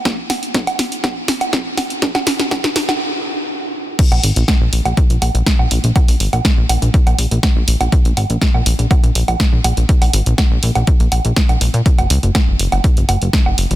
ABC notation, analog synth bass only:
X:1
M:4/4
L:1/16
Q:1/4=122
K:Gblyd
V:1 name="Analog synth bass" clef=bass
z16 | z16 | z B,,, A,,, B,,, z B,,, B,,, B,,, z B,,, B,,, B,,, z B,,, B,,, B,,, | z B,,, A,,, B,,, z B,,, B,,, B,,, z B,,, B,,, B,,, z B,,, B,,, B,,, |
z B,,, A,,, B,,, z B,,, B,,, B,,, z B,,, B,,, B,,, z B,,, B,,, B,,, | z B,,, A,,, B,,, z B,,, B,,, B,,, z B,,, B,,, B,,, z B,,, B,,, B,, | z G,,, D,, G,,, z G,,, G,,, G,,, z G,,, G,,, G,,, z G,,, G,,, G,,, |]